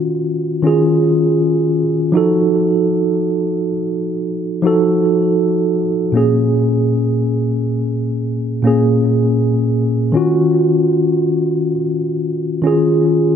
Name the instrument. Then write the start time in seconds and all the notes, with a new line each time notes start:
tine electric piano
Already playing: D#3 C#4 F4 F#4
0.62 D#3 C#4 F4
0.67 G#4
2.12 F3 D#4 F#4
2.17 A4
4.62 F3 D#4 F#4
4.67 A4
6.12 A#2 A#3 C#4
6.17 G#4
8.62 A#2 A#3 C#4
8.67 G#4
10.12 D#3 C#4 F4
10.17 F#4
12.62 D#3 C#4 F4
12.67 G#4